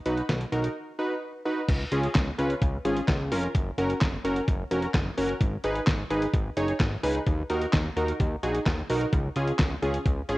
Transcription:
0.06 B1 D#4 F#4 B4, closed hi-hat
0.17 closed hi-hat
0.29 B1, snare, closed hi-hat
0.41 closed hi-hat
0.52 B1 D#4 F#4 A#4, closed hi-hat
0.64 closed hi-hat
0.99 D#4 F#4 B4
1.45 D#4 F#4 B4
1.69 C#2, kick, closed hi-hat, crash
1.92 C#2 C#4 F4 G#4, closed hi-hat
2.03 closed hi-hat
2.15 C#2, kick, snare, clap, closed hi-hat
2.38 C#2 C#4 F4 B4, closed hi-hat
2.50 closed hi-hat
2.62 C#2, kick, closed hi-hat
2.85 G#1 C#4 F4 G#4, closed hi-hat
2.97 closed hi-hat
3.08 C#2, kick, snare, clap, closed hi-hat
3.31 F1 C#4 F4 A#4, open hi-hat
3.43 closed hi-hat
3.55 F#1, kick, closed hi-hat
3.78 F#1 C#4 F#4 A#4, closed hi-hat
3.90 closed hi-hat
4.01 F#1, kick, snare, clap, closed hi-hat
4.24 F#1 C#4 F#4 A#4, closed hi-hat
4.36 closed hi-hat
4.48 F#1, kick, closed hi-hat
4.71 F1 C#4 F#4 A#4, closed hi-hat
4.82 closed hi-hat
4.94 F#1, kick, snare, clap, closed hi-hat
5.17 F#1 C#4 F#4 A#4, open hi-hat
5.29 closed hi-hat
5.41 G#1, kick, closed hi-hat
5.64 G#1 D#4 G#4 B4, closed hi-hat
5.76 closed hi-hat
5.87 G#1, kick, snare, clap, closed hi-hat
6.10 G#1 D#4 G#4 B4, closed hi-hat
6.22 closed hi-hat
6.34 G#1, kick, closed hi-hat
6.57 F#1 D#4 G#4 C#5, closed hi-hat
6.68 closed hi-hat
6.80 G#1, kick, snare, clap, closed hi-hat
7.03 C#2 D#4 G#4 B4, open hi-hat
7.15 closed hi-hat
7.26 D#2, kick, closed hi-hat
7.50 D#2 D#4 F#4 A#4, closed hi-hat
7.61 closed hi-hat
7.73 D#2, kick, snare, clap, closed hi-hat
7.96 D#2 D#4 F#4 A#4, closed hi-hat
8.08 closed hi-hat
8.20 D#2, kick, closed hi-hat
8.43 A#1 D#4 F#4 G#4, closed hi-hat
8.54 closed hi-hat
8.66 D#2, kick, snare, clap, closed hi-hat
8.89 B1 D#4 F#4 A#4, open hi-hat
9.01 closed hi-hat
9.13 C#2, kick, closed hi-hat
9.36 C#2 C#4 F4 G#4, closed hi-hat
9.47 closed hi-hat
9.59 C#2, kick, snare, clap, closed hi-hat
9.82 C#2 C#4 F4 G#4, closed hi-hat
9.94 closed hi-hat
10.06 C#2, kick, closed hi-hat
10.29 G#1 C#4 F4 G#4, closed hi-hat

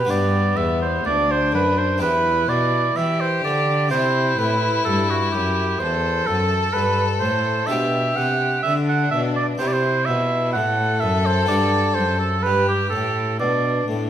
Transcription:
Already playing: B4
0.05 G2 B3 D4 G4
0.10 G2 D5
0.57 E2 E5
0.82 C5
1.05 D2 D4 D5
1.31 C5
1.52 F#2 B4
1.78 C5
1.98 E2 E4 G4 B4
2.48 B2 D5
2.96 E3 G4 E5
3.20 C5
3.44 D3 D5
3.89 C3 E4 G4 C5
3.93 E4
4.38 A2 B4
4.85 G2 A4
5.10 F#4
5.31 F#2 G4
5.79 E2 A4 C5
6.26 F#2 A4
6.73 G2 B4
7.20 A2 C5
7.66 B2 D4 G4 E5
7.71 B2 G4
8.16 C3 F#5
8.63 D3 D4 E5
8.89 F#5
9.11 B2 E5
9.36 D5
9.58 C3 E4 G4 C5
9.67 D5
9.73 C5
10.05 B2 E5
10.53 A2 A4 F#5
11.00 F#2 E5
11.26 C5
11.46 B3 D4 G4 D5
11.50 G2
11.94 C5
11.98 F#2
12.19 A4
12.43 G2 G4 B4
12.68 G4
12.89 A2 A4
13.40 B2 D4 D5
13.88 A2

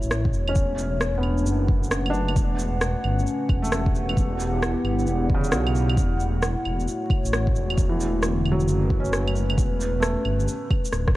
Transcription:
Already playing: A3 E4 F#4 C#5 E5
0.02 A1, shaker
0.11 cross-stick, shaker
0.25 kick
0.33 E1, shaker
0.48 C#4, claves
0.55 kick, shaker
0.78 shaker
0.83 B4
0.93 D4
1.01 cross-stick, shaker
1.18 B3
1.23 E1, claves
1.38 F#5, shaker
1.46 F#1, shaker
1.68 kick
1.83 shaker
1.91 cross-stick, shaker
2.06 claves
2.10 D4, shaker
2.28 claves
2.36 E1, kick, shaker
2.59 shaker
2.80 C#4, cross-stick, shaker
3.04 G1, claves
3.19 G4, shaker
3.27 shaker
3.49 E1, kick, claves
3.62 A3, shaker
3.72 E1, cross-stick, shaker
3.86 kick
3.94 E1, shaker
4.09 claves
4.17 E1 B3, kick, shaker
4.26 E4
4.40 shaker
4.63 cross-stick, shaker
4.84 G1, claves
4.99 D5, shaker
5.07 E1, shaker
5.30 kick
5.34 C#3
5.44 shaker
5.52 B1, cross-stick, shaker
5.67 claves
5.75 shaker
5.89 claves
5.97 E1 A3, kick, shaker
6.20 shaker
6.40 F#4, cross-stick, shaker
6.65 E1, claves
6.80 C#5, shaker
6.88 shaker
7.10 kick, claves
7.25 A1, shaker
7.33 cross-stick, shaker
7.47 kick
7.55 E1, shaker
7.70 claves
7.78 kick, shaker
7.89 E3
8.00 D3, shaker
8.23 cross-stick, shaker
8.36 B4
8.45 E1, claves
8.52 F#3
8.60 shaker
8.68 F#1, shaker
8.90 kick
9.00 C#4
9.05 shaker
9.13 cross-stick, shaker
9.28 claves
9.36 shaker
9.50 claves
9.58 E1, kick, shaker
9.81 shaker
9.95 C#4
10.00 A3 G4, cross-stick, shaker
10.25 G1, claves
10.40 shaker
10.48 shaker
10.71 kick, claves
10.76 D4
10.80 F#4
10.85 shaker
10.89 D1 E5, cross-stick, shaker
11.08 kick, cross-stick

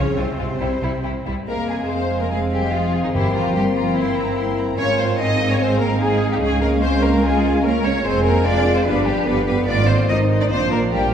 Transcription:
Already playing: C#3 C#4 C#5
0.16 C2 C3 G#3 C4 F4 C5
0.39 C2 G#3 F4
0.61 C2 G3 E4
0.82 C2 G3 E4
1.04 C2 G3 E4
1.26 C2 G3 E4
1.47 F1 G#3 A#3 C4 A#4 F5
1.69 G#3 G#4 G#5
1.89 G#3 C4 C5 F5
2.11 G#5
2.21 A#3 A#4
2.31 G#3 C4 G#4 F5
2.52 G3 G4 G#5
2.72 F3 F4 G#4 F5
2.94 G#5
3.04 D#3 D#4
3.13 G1 G2 E3 A#3 E4 G4 G5 C6
3.34 F3 F4 A#5
3.55 G3 A#3 G4 C6
3.75 F3 F4 A#5
3.96 E3 C4 E4 C6
4.17 A#5
4.37 E4 C6
4.58 A#5
4.77 G#1 G#3 C4 C#4 F4 C#5 F5 G#5
4.99 C4 C5 F5
5.19 C4 D#4 D#5 G#5
5.40 F5
5.50 C#4 C#5
5.60 G#3 C4 C5 G#5
5.80 A#3 A#4 F5
6.01 G#3 D#4 G#4 G#5
6.22 F5
6.32 G3 G4
6.41 C#2 G#3 C#4 G#4 G#5
6.61 A#3 A#4 F5
6.82 C4 C5 G#5
7.03 A#3 A#4 F5
7.23 G#3 F4 G#4 G#5
7.43 F5
7.64 A#3 C#4 A#4 G#5
7.84 C#4 C#5 F5
8.04 F1 G#3 C4 F4 C5 G#5
8.24 A#3 A#4 G#5
8.44 F1 C4 D4 F4 D5 F5 G#5
8.66 G#5
8.75 C4 C5
8.85 G1 F3 G3 B3 D4 B4 D5 F5
9.06 G3 G4 F5
9.26 G1 D3 B3 G4 B4 F5
9.47 B3 B4 F5
9.68 G#1 D#3 A#3 C4 D4 F4 D5 D#5
9.88 C4 C5 D#5
10.09 G#1 D#3 G#3 D#4 C5 D#5
10.30 D#5
10.41 D4 D5
10.50 A#1 F3 A#3 C4 D4 C5 D5
10.71 A#3 A#4 D5
10.92 A#1 G3 A#3 F4 G4 D5

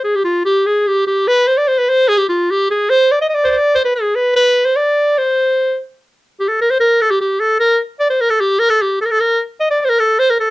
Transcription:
0.04 G#4
0.15 G4
0.24 F4
0.46 G4
0.66 G#4
0.87 G4
1.07 G4
1.28 B4
1.48 C5
1.57 D5
1.68 C5
1.78 B4
1.89 C5
2.08 G#4
2.17 G4
2.29 F4
2.50 G4
2.70 G#4
2.90 C5
3.11 D5
3.21 D#5
3.29 D#5
3.34 D5
3.44 C5 D5
3.50 C5
3.55 D5
3.75 C5
3.85 B4
3.95 G#4
4.15 B4
4.36 B4
4.65 C5
4.76 D5
5.18 C5
6.40 G4
6.49 A4
6.61 A#4
6.71 C5
6.80 A#4
7.02 A4
7.11 G4
7.21 G4
7.40 A4
7.60 A#4
8.00 D5
8.10 C5
8.21 A#4
8.30 A4
8.41 G4
8.59 A#4
8.70 A4
8.82 G4
9.01 A4
9.05 A#4
9.11 A4
9.20 A#4
9.60 D#5
9.71 D5
9.81 D5
9.85 C5
9.89 A#4
9.99 A4
10.19 C5
10.30 A#4
10.40 A4

